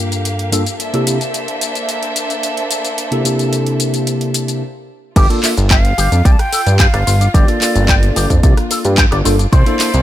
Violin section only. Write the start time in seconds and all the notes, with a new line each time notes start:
Already playing: A#3 G4 F5
0.80 A#3 D4 A4 C5 E5
5.16 F4
9.52 A#3 E4 D5 A5